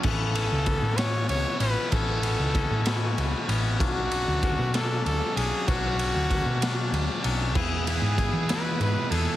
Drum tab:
CC |x-----|------|------|------|
RD |-xxxxx|xxxxxx|xxxxxx|xxxxxx|
SD |---o--|---o--|---o--|---o--|
BD |o-o---|o-o---|o-o---|o-o---|

CC |x-----|
RD |-xxxxx|
SD |---o--|
BD |o-o---|